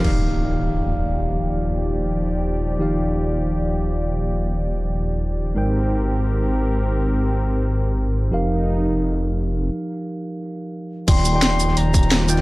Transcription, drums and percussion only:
0.04 crash
11.08 kick, closed hi-hat, crash
11.17 snare
11.25 closed hi-hat, shaker
11.42 snare, closed hi-hat
11.60 closed hi-hat, shaker
11.68 snare
11.77 closed hi-hat
11.94 kick, closed hi-hat, shaker
12.03 closed hi-hat
12.12 snare, closed hi-hat
12.20 snare
12.28 closed hi-hat, shaker
12.37 snare, closed hi-hat

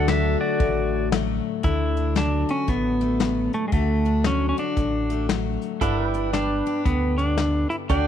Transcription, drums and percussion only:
0.08 snare, open hi-hat
0.60 kick, open hi-hat
1.12 snare, open hi-hat
1.64 kick, closed hi-hat
1.96 closed hi-hat
2.16 snare, closed hi-hat
2.49 closed hi-hat
2.68 kick, closed hi-hat
3.01 closed hi-hat
3.20 snare, closed hi-hat
3.53 closed hi-hat
3.72 kick, closed hi-hat
4.05 closed hi-hat
4.24 snare, closed hi-hat
4.57 closed hi-hat
4.77 kick, closed hi-hat
5.10 closed hi-hat
5.29 snare, closed hi-hat
5.62 closed hi-hat
5.81 kick, closed hi-hat
6.14 closed hi-hat
6.34 snare, closed hi-hat
6.66 closed hi-hat
6.86 kick, closed hi-hat
7.18 closed hi-hat
7.37 snare, closed hi-hat
7.70 closed hi-hat
7.89 kick, closed hi-hat

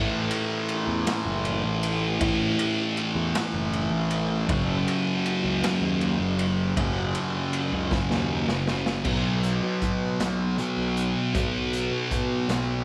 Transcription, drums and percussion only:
0.31 ride
0.69 ride
1.07 snare, ride
1.45 ride
1.83 ride
2.21 kick, ride
2.59 ride
2.97 ride
3.35 snare, ride
3.73 ride
4.11 ride
4.49 kick, ride
4.88 ride
5.26 ride
5.64 snare, ride
6.01 ride
6.39 ride
6.77 kick, ride
7.15 ride
7.53 ride
7.91 kick, snare
8.11 snare
8.48 snare
8.67 snare
8.86 snare
9.05 kick, crash
9.43 closed hi-hat
9.82 kick, closed hi-hat
10.20 snare, closed hi-hat
10.58 closed hi-hat
10.97 closed hi-hat
11.35 kick, closed hi-hat
11.73 closed hi-hat
12.11 kick, closed hi-hat
12.49 snare, closed hi-hat

